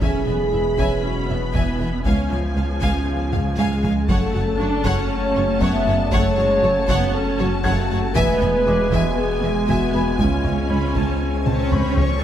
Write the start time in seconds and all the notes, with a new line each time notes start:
Already playing: A4
0.01 E1 E2 B2 E3 B3 C#4 G#4 B4 E5 G#5 B5, taiko
0.27 E1 E2 B3 E4 E5 G#5
0.52 E1 E2 G#3 E4 E5
0.78 E1 E2 E3 C#4 C#5 E5 G#5, taiko
1.04 C#4 F#4
1.29 E1 E2 B3 E5
1.54 E1 E2 E3 E4 E5 G#5, taiko
1.80 E1 E2 G#3 E5 G#5
1.93 D4
2.05 C#2 C#3 F3 C#4 G#4 F5 G#5, taiko
2.30 C#2 F3 C#4 F5 G#5
2.56 C#2 C#4 F5
2.81 C#2 C#3 F5 G#5, taiko
3.32 C#2 G#3 F5, taiko low-mid
3.58 C#2 C#3 G#3 F5 G#5, taiko high
3.83 C#2 F3 F5 G#5, taiko low
4.08 F#1 F#2 C#3 F#3 A3 F#4 A4 C#5 F#5 A5, taiko
4.34 F#1 F#2 F#4 C#5 F#5
4.59 F#1 F#2 D4 F#4 C#5
4.84 F#1 F#2 F#3 C#4 C#5 F#5, taiko
5.11 C#5
5.36 F#1 F#2 C#4 C#5
5.61 F#1 F#2 F#3 B3 C#5 E5 F#5, taiko
5.87 F#1 F#2 A3 C#5 F#5
6.00 D5
6.12 F#1 F#2 F#3 A3 C#5 F#5, taiko
6.37 F#1 F#2 G#3 F#4 C#5 F#5
6.63 F#1 F#2 A3 F#4 C#5
6.88 F#1 F#2 F#3 B3 C#5 F#5, taiko
7.14 C#4 A4
7.39 F#1 F#2 C#4 F#4 C#5
7.64 F#1 F#2 F#3 A3 C#5 F#5 G#6, taiko
7.90 F#1 F#2 A3 C#5 F#5
8.15 E1 E2 B2 E3 G#3 B3 G#4 B4 E5 G#5, taiko
8.41 E1 E2 E4 E5 G#5, taiko low-mid
8.67 E1 E2 G#3 E4 E5 D6
8.92 E1 E2 E3 F#3 E5 G#5, taiko
9.17 B3 G#4
9.43 E1 E2 G#3 B3 E5
9.68 E1 E2 E3 B3 F#4 E5 G#5, taiko
9.94 E1 E2 G#3 B4 E5 G#5 B5
10.19 C#2 C#3 C#4 F4 C#5 G#5, taiko, swell
10.44 C#2 C#4 G#5, taiko low-mid
10.70 C#2 C#4 B5
10.95 C#2 C#3 A5, taiko
11.21 G#5
11.46 C#2 G#3 C#4 C#5 A5, taiko mid
11.72 C#2 C#3 B5 C#6, taiko low-mid
11.97 C#2 F3 C#6, taiko low